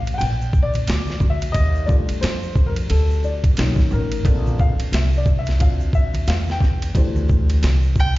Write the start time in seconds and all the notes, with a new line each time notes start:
Already playing: A1 F5
0.06 ride, shaker
0.14 F#5 G5
0.19 A#1, ride, shaker
0.41 shaker
0.53 kick, shaker
0.63 D5
0.74 ride, high conga, shaker
0.87 D2, snare, hi-hat pedal, ride, high conga, shaker
1.07 snare, high conga, shaker
1.20 D2, kick, low conga, shaker
1.30 E5
1.41 ride, shaker
1.52 D#2 D#5, kick, ride, shaker
1.75 shaker
1.86 G3 A3 D4 F4 D5, kick, high conga, shaker
2.09 muted upright bass stroke, ride, shaker
2.21 F2 C5, snare, hi-hat pedal, ride, shaker
2.43 shaker
2.55 kick, low conga, shaker
2.67 A#4
2.76 ride, shaker
2.89 D2 A4, ride, shaker
3.10 shaker
3.23 D5, shaker
3.44 kick, ride, high conga, shaker
3.57 B1 A#3 C#4 D#4, snare, hi-hat pedal, ride, high conga, shaker
3.76 kick, snare, high conga, shaker
3.91 A1 A#4, low conga, shaker
4.12 ride, shaker
4.25 A#1 C4 D4 A4, kick, ride, shaker
4.46 high conga, shaker
4.59 F5, kick, high conga, low conga, shaker
4.79 muted upright bass stroke, ride, shaker
4.92 C2 E5, snare, hi-hat pedal, ride, shaker
5.13 shaker
5.17 D5
5.26 kick, low conga, shaker
5.39 E5
5.46 snare, ride, shaker
5.58 D2 C4 D4 F4 F5, kick, ride, shaker
5.80 shaker
5.93 E5, kick, shaker
6.14 ride, high conga, shaker
6.27 E2 F5, snare, hi-hat pedal, ride, shaker
6.47 G5, snare, high conga, shaker
6.61 kick, snare, low conga, shaker
6.82 ride, shaker
6.94 D2 E3 A3 D4 G4 C5, kick, ride, shaker
7.16 high conga, shaker
7.29 kick, low conga, shaker
7.49 ride, shaker
7.63 C2, snare, hi-hat pedal, ride, shaker
7.83 shaker
7.96 kick, low conga, shaker
8.00 G5